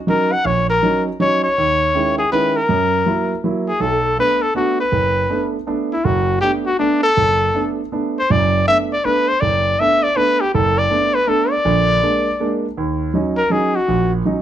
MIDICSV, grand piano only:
0, 0, Header, 1, 2, 480
1, 0, Start_track
1, 0, Tempo, 373367
1, 563, Time_signature, 3, 2, 24, 8
1, 18537, End_track
2, 0, Start_track
2, 0, Title_t, "Grand piano"
2, 0, Program_c, 0, 0
2, 90, Note_on_c, 0, 54, 50
2, 96, Note_on_c, 0, 61, 42
2, 100, Note_on_c, 0, 63, 54
2, 408, Note_off_c, 0, 54, 0
2, 412, Note_off_c, 0, 61, 0
2, 413, Note_off_c, 0, 63, 0
2, 575, Note_on_c, 0, 34, 59
2, 984, Note_off_c, 0, 34, 0
2, 1063, Note_on_c, 0, 54, 47
2, 1068, Note_on_c, 0, 61, 41
2, 1075, Note_on_c, 0, 63, 48
2, 1376, Note_off_c, 0, 54, 0
2, 1378, Note_off_c, 0, 61, 0
2, 1382, Note_off_c, 0, 63, 0
2, 1539, Note_on_c, 0, 54, 49
2, 1540, Note_on_c, 0, 61, 45
2, 1554, Note_on_c, 0, 63, 53
2, 1854, Note_off_c, 0, 54, 0
2, 1855, Note_off_c, 0, 61, 0
2, 1862, Note_off_c, 0, 63, 0
2, 2028, Note_on_c, 0, 39, 59
2, 2433, Note_off_c, 0, 39, 0
2, 2503, Note_on_c, 0, 51, 46
2, 2510, Note_on_c, 0, 61, 43
2, 2513, Note_on_c, 0, 56, 45
2, 2517, Note_on_c, 0, 64, 49
2, 2817, Note_off_c, 0, 51, 0
2, 2821, Note_off_c, 0, 61, 0
2, 2822, Note_off_c, 0, 56, 0
2, 2824, Note_off_c, 0, 64, 0
2, 2981, Note_on_c, 0, 51, 52
2, 2987, Note_on_c, 0, 56, 46
2, 2990, Note_on_c, 0, 64, 55
2, 2993, Note_on_c, 0, 61, 45
2, 3297, Note_off_c, 0, 51, 0
2, 3300, Note_off_c, 0, 56, 0
2, 3301, Note_off_c, 0, 64, 0
2, 3303, Note_off_c, 0, 61, 0
2, 3457, Note_on_c, 0, 42, 62
2, 3868, Note_off_c, 0, 42, 0
2, 3935, Note_on_c, 0, 54, 46
2, 3938, Note_on_c, 0, 58, 44
2, 3947, Note_on_c, 0, 64, 54
2, 4254, Note_off_c, 0, 54, 0
2, 4256, Note_off_c, 0, 58, 0
2, 4260, Note_off_c, 0, 64, 0
2, 4422, Note_on_c, 0, 54, 49
2, 4424, Note_on_c, 0, 58, 44
2, 4431, Note_on_c, 0, 64, 55
2, 4738, Note_off_c, 0, 54, 0
2, 4739, Note_off_c, 0, 58, 0
2, 4742, Note_off_c, 0, 64, 0
2, 4887, Note_on_c, 0, 35, 65
2, 5303, Note_off_c, 0, 35, 0
2, 5383, Note_on_c, 0, 57, 47
2, 5386, Note_on_c, 0, 59, 47
2, 5389, Note_on_c, 0, 62, 56
2, 5699, Note_off_c, 0, 57, 0
2, 5700, Note_off_c, 0, 59, 0
2, 5702, Note_off_c, 0, 62, 0
2, 5848, Note_on_c, 0, 59, 50
2, 5851, Note_on_c, 0, 57, 52
2, 5859, Note_on_c, 0, 62, 54
2, 6172, Note_off_c, 0, 59, 0
2, 6173, Note_off_c, 0, 57, 0
2, 6177, Note_off_c, 0, 62, 0
2, 6325, Note_on_c, 0, 30, 62
2, 6742, Note_off_c, 0, 30, 0
2, 6813, Note_on_c, 0, 57, 50
2, 6818, Note_on_c, 0, 59, 44
2, 6825, Note_on_c, 0, 62, 52
2, 7134, Note_off_c, 0, 57, 0
2, 7137, Note_off_c, 0, 59, 0
2, 7140, Note_off_c, 0, 62, 0
2, 7286, Note_on_c, 0, 57, 51
2, 7291, Note_on_c, 0, 59, 47
2, 7297, Note_on_c, 0, 62, 60
2, 7611, Note_off_c, 0, 57, 0
2, 7613, Note_off_c, 0, 59, 0
2, 7616, Note_off_c, 0, 62, 0
2, 7773, Note_on_c, 0, 30, 66
2, 8186, Note_off_c, 0, 30, 0
2, 8262, Note_on_c, 0, 57, 49
2, 8267, Note_on_c, 0, 59, 47
2, 8276, Note_on_c, 0, 62, 54
2, 8578, Note_off_c, 0, 57, 0
2, 8581, Note_off_c, 0, 59, 0
2, 8586, Note_off_c, 0, 62, 0
2, 8731, Note_on_c, 0, 57, 53
2, 8736, Note_on_c, 0, 59, 49
2, 8743, Note_on_c, 0, 62, 57
2, 9053, Note_off_c, 0, 57, 0
2, 9056, Note_off_c, 0, 59, 0
2, 9059, Note_off_c, 0, 62, 0
2, 9216, Note_on_c, 0, 30, 61
2, 9628, Note_off_c, 0, 30, 0
2, 9700, Note_on_c, 0, 57, 48
2, 9704, Note_on_c, 0, 59, 46
2, 9713, Note_on_c, 0, 62, 57
2, 10017, Note_off_c, 0, 57, 0
2, 10020, Note_off_c, 0, 59, 0
2, 10024, Note_off_c, 0, 62, 0
2, 10184, Note_on_c, 0, 59, 48
2, 10185, Note_on_c, 0, 57, 49
2, 10196, Note_on_c, 0, 62, 56
2, 10499, Note_off_c, 0, 59, 0
2, 10500, Note_off_c, 0, 57, 0
2, 10505, Note_off_c, 0, 62, 0
2, 10671, Note_on_c, 0, 30, 63
2, 10676, Note_on_c, 0, 42, 62
2, 11076, Note_off_c, 0, 30, 0
2, 11078, Note_off_c, 0, 42, 0
2, 11150, Note_on_c, 0, 57, 50
2, 11158, Note_on_c, 0, 62, 52
2, 11159, Note_on_c, 0, 59, 46
2, 11462, Note_off_c, 0, 57, 0
2, 11466, Note_off_c, 0, 59, 0
2, 11466, Note_off_c, 0, 62, 0
2, 11630, Note_on_c, 0, 57, 51
2, 11636, Note_on_c, 0, 59, 48
2, 11636, Note_on_c, 0, 62, 58
2, 11942, Note_off_c, 0, 57, 0
2, 11944, Note_off_c, 0, 59, 0
2, 11944, Note_off_c, 0, 62, 0
2, 12108, Note_on_c, 0, 30, 62
2, 12513, Note_off_c, 0, 30, 0
2, 12599, Note_on_c, 0, 59, 44
2, 12600, Note_on_c, 0, 57, 50
2, 12610, Note_on_c, 0, 62, 57
2, 12906, Note_off_c, 0, 57, 0
2, 12906, Note_off_c, 0, 59, 0
2, 12911, Note_off_c, 0, 62, 0
2, 13058, Note_on_c, 0, 57, 57
2, 13062, Note_on_c, 0, 59, 48
2, 13071, Note_on_c, 0, 62, 60
2, 13375, Note_off_c, 0, 57, 0
2, 13377, Note_off_c, 0, 59, 0
2, 13381, Note_off_c, 0, 62, 0
2, 13554, Note_on_c, 0, 30, 71
2, 13956, Note_off_c, 0, 30, 0
2, 14016, Note_on_c, 0, 57, 52
2, 14029, Note_on_c, 0, 59, 47
2, 14030, Note_on_c, 0, 62, 59
2, 14334, Note_off_c, 0, 57, 0
2, 14340, Note_off_c, 0, 59, 0
2, 14340, Note_off_c, 0, 62, 0
2, 14488, Note_on_c, 0, 57, 52
2, 14494, Note_on_c, 0, 59, 48
2, 14500, Note_on_c, 0, 62, 64
2, 14809, Note_off_c, 0, 57, 0
2, 14812, Note_off_c, 0, 59, 0
2, 14815, Note_off_c, 0, 62, 0
2, 14979, Note_on_c, 0, 34, 70
2, 14981, Note_on_c, 0, 50, 64
2, 15387, Note_off_c, 0, 34, 0
2, 15389, Note_off_c, 0, 50, 0
2, 15465, Note_on_c, 0, 56, 52
2, 15470, Note_on_c, 0, 58, 45
2, 15471, Note_on_c, 0, 62, 56
2, 15777, Note_off_c, 0, 56, 0
2, 15780, Note_off_c, 0, 58, 0
2, 15781, Note_off_c, 0, 62, 0
2, 15943, Note_on_c, 0, 56, 53
2, 15948, Note_on_c, 0, 58, 48
2, 15955, Note_on_c, 0, 62, 54
2, 16257, Note_off_c, 0, 56, 0
2, 16259, Note_off_c, 0, 58, 0
2, 16262, Note_off_c, 0, 62, 0
2, 16423, Note_on_c, 0, 39, 65
2, 16829, Note_off_c, 0, 39, 0
2, 16889, Note_on_c, 0, 54, 46
2, 16904, Note_on_c, 0, 61, 45
2, 16906, Note_on_c, 0, 63, 52
2, 17209, Note_off_c, 0, 54, 0
2, 17217, Note_off_c, 0, 61, 0
2, 17218, Note_off_c, 0, 63, 0
2, 17356, Note_on_c, 0, 54, 51
2, 17363, Note_on_c, 0, 61, 46
2, 17375, Note_on_c, 0, 63, 54
2, 17683, Note_off_c, 0, 54, 0
2, 17686, Note_off_c, 0, 61, 0
2, 17692, Note_off_c, 0, 63, 0
2, 17848, Note_on_c, 0, 34, 62
2, 18261, Note_off_c, 0, 34, 0
2, 18325, Note_on_c, 0, 54, 48
2, 18329, Note_on_c, 0, 61, 42
2, 18335, Note_on_c, 0, 63, 57
2, 18537, Note_off_c, 0, 54, 0
2, 18537, Note_off_c, 0, 61, 0
2, 18537, Note_off_c, 0, 63, 0
2, 18537, End_track
0, 0, End_of_file